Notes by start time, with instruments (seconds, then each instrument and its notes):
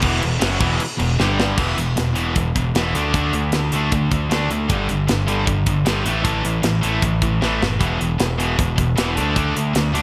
0.02 picked electric bass E1, distorted electric guitar E2 B2 E3, kick, crash
0.21 picked electric bass E1, distorted electric guitar E2 B2, crash
0.39 picked electric bass F#1, distorted electric guitar F#2 C#3 F#3, snare, crash
0.59 picked electric bass E1, distorted electric guitar E2 B2 E3, kick, crash
0.79 muted overdriven electric guitar stroke, muted distorted electric guitar stroke, muted picked electric bass stroke, crash
0.99 picked electric bass E1, distorted electric guitar E2 B2, crash
1.19 picked electric bass G1, distorted electric guitar G2 D3 G3, snare
1.40 snare
1.57 picked electric bass E1, distorted electric guitar E2 B2 E3, kick, crash
1.77 picked electric bass E1, distorted electric guitar E2 B2, closed hi-hat
1.97 picked electric bass E1, distorted electric guitar E2 B2, snare, closed hi-hat
2.15 distorted electric guitar E2 B2 E3, closed hi-hat
2.36 picked electric bass E1, distorted electric guitar E2 B2, kick, closed hi-hat
2.55 picked electric bass E1, distorted electric guitar E2 B2, kick, closed hi-hat
2.74 picked electric bass E1, distorted electric guitar E2 B2 E3, snare, closed hi-hat
2.94 picked electric bass D2, distorted electric guitar D3 A3 D4, closed hi-hat
3.14 picked electric bass D2, distorted electric guitar D3 A3 D4, kick, closed hi-hat
3.33 picked electric bass D2, distorted electric guitar D3 A3, closed hi-hat
3.52 picked electric bass D2, distorted electric guitar D3 A3, snare, closed hi-hat
3.72 picked electric bass D2, distorted electric guitar D3 A3 D4, closed hi-hat
3.91 picked electric bass D2, distorted electric guitar D3 A3, kick, closed hi-hat
4.11 picked electric bass D2, distorted electric guitar D3 A3, kick, closed hi-hat
4.29 picked electric bass D2, distorted electric guitar D3 A3 D4, snare, closed hi-hat
4.49 picked electric bass D2, distorted electric guitar D3 A3, closed hi-hat
4.68 picked electric bass G1, distorted electric guitar G2 D3 G3, kick, closed hi-hat
4.89 picked electric bass G1, distorted electric guitar G2 D3, closed hi-hat
5.07 picked electric bass G1, distorted electric guitar G2 D3, snare, closed hi-hat
5.27 distorted electric guitar G2 D3 G3, closed hi-hat
5.46 picked electric bass G1, distorted electric guitar G2 D3, kick, closed hi-hat
5.66 picked electric bass G1, distorted electric guitar G2 D3, kick, closed hi-hat
5.85 picked electric bass G1, distorted electric guitar G2 D3 G3, snare, closed hi-hat
6.03 picked electric bass A1, distorted electric guitar A2 E3 A3, closed hi-hat
6.24 picked electric bass A1, distorted electric guitar A2 E3 A3, kick, closed hi-hat
6.44 picked electric bass A1, distorted electric guitar A2 E3, closed hi-hat
6.62 picked electric bass A1, distorted electric guitar A2 E3, snare, closed hi-hat
6.81 picked electric bass A1, distorted electric guitar A2 E3 A3, closed hi-hat
7.01 picked electric bass A1, distorted electric guitar A2 E3, kick, closed hi-hat
7.22 picked electric bass A1, distorted electric guitar A2 E3, kick, closed hi-hat
7.41 picked electric bass A1, distorted electric guitar A2 E3 A3, snare
7.61 picked electric bass F#1, distorted electric guitar A2 E3, snare
7.80 picked electric bass E1, distorted electric guitar E2 B2 E3, kick, closed hi-hat
7.99 picked electric bass E1, distorted electric guitar E2 B2, closed hi-hat
8.18 picked electric bass E1, distorted electric guitar E2 B2, snare, closed hi-hat
8.38 distorted electric guitar E2 B2 E3, closed hi-hat
8.56 picked electric bass E1, distorted electric guitar E2 B2, kick, closed hi-hat
8.76 picked electric bass E1, distorted electric guitar E2 B2, kick, closed hi-hat
8.96 distorted electric guitar E2 B2 E3, snare, closed hi-hat
9.16 picked electric bass D2, distorted electric guitar D3 A3 D4, closed hi-hat
9.35 picked electric bass D2, distorted electric guitar D3 A3 D4, kick, closed hi-hat
9.54 picked electric bass D2, distorted electric guitar D3 A3, closed hi-hat
9.73 picked electric bass D2, distorted electric guitar D3 A3, snare, closed hi-hat
9.94 picked electric bass D2, distorted electric guitar D3 A3 D4, closed hi-hat